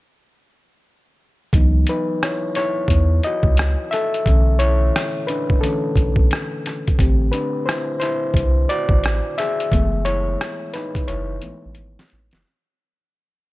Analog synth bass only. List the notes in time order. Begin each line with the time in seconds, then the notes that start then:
1.54 C#2
2.89 E2
3.44 C#2
4.27 B1
5.97 B1
7.00 A1
8.35 C2
8.90 A1
9.73 F#1
11.10 F#1
11.45 A1
11.66 A1
11.78 G#1
12.13 A1
12.34 F#1